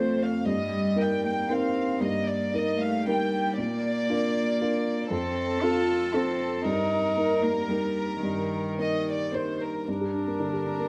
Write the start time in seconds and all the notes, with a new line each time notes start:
Already playing: F2 A3 C4 F4 A4 C5
0.22 F5
0.45 G2 G3 D#5
0.96 A#3 D#4 A#4
1.01 G5
1.24 A#3 G5
1.49 A#3 C4 D#4 A#4 F5
2.01 G2 A#3 D#5
2.28 D5
2.54 A#3 D#4 A#4 D#5
2.80 A3 F5
3.06 G3 A#3 D#4 A#4 G5
3.57 A#2 A#3 D5
4.10 D4 F4 A#4
4.61 D4 F4 A#4
5.11 F2 C4 A4
5.62 C4 F4 A4
6.14 C4 F4 A4
6.64 G2 D#4 A#4
7.17 A#3 D#4 A#4
7.43 A#3
7.68 G3 A#3 D#4 A#4
8.22 G2 D#3
8.79 A#3 D#4 A#4 D#5
9.09 D5
9.33 A#3 D#4 A#4 C5
9.62 A#4
9.87 G2 G3 D4 A#4
10.01 G4
10.14 D4
10.28 A#3
10.40 D3
10.53 G4
10.66 D4
10.80 A#3